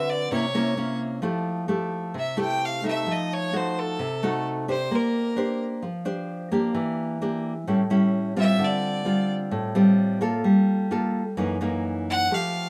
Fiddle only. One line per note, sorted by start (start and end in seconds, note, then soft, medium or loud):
0.00 0.11 E5 medium
0.10 0.32 D5 medium
0.32 0.97 C#5 medium
2.19 2.38 E5 medium
2.41 2.66 G5 loud
2.65 2.86 F5 medium
2.88 3.13 E5 medium
3.12 3.35 D#5 medium
3.34 3.58 C#5 medium
3.57 3.80 C5 medium
3.79 4.47 A4 medium
4.71 4.97 C5 medium
4.95 5.63 A#4 medium
8.39 8.66 E5 medium
8.64 9.31 D5 medium
12.10 12.36 F#5 loud
12.34 12.69 F5 medium